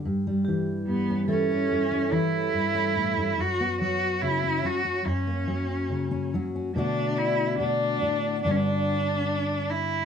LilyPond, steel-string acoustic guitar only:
\new Staff \with { instrumentName = "Steel-string acoustic guitar" } { \clef bass \time 4/4 \key b \minor \tempo 4 = 72 << { r16 g4 cis'16 e'16 cis'8 g4 cis'8. | r16 b4 cis'16 cis'16 cis'16 r16 ais4 cis'16 fis'16 cis'16 | <d a d' fis'>2 <d b d' fis'>2 | } \\ { g,8 e8 g,8 e8 g,8 e8 g,8 a,16 g,16 | fis,8 fis8 cis8 fis8 fis,8 fis8 cis8 fis8 | b,4 b,8 a,8 g,2 | } >> }